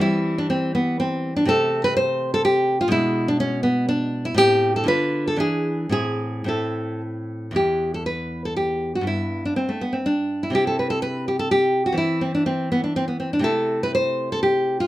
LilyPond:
\new Staff \with { instrumentName = "Nylon-string guitar" } { \time 3/4 \key c \lydian \tempo 4 = 123 << { e'8. d'16 c'8 b8 c'8. d'16 | \key a \minor a'8. b'16 c''8. a'16 g'8. f'16 | e'8. d'16 cis'8 b8 d'8. e'16 | g'8. a'16 b'8. a'16 gis'4 |
gis'4 a'4 r4 | \key c \lydian g'8. a'16 b'8. a'16 g'8. fis'16 | e'8. d'16 c'16 a16 b16 c'16 d'8. e'16 | g'16 a'16 b'16 a'16 b'8 g'16 a'16 g'8. fis'16 |
e'8 c'16 d'16 c'8 b16 d'16 c'16 b16 c'16 d'16 | \key a \minor a'8. b'16 c''8. a'16 g'8. f'16 | } \\ { <e g c'>2. | <c a c'>2. | <b, gis d'>2. | <a, c' e'>4 <d d' f'>4 <e d' e'>4 |
<a, c' e'>4 <a, c' e'>2 | <e, b e'>2. | <g, b>2. | <c c' e'>2. |
<e c'>2. | <c a e'>2. | } >> }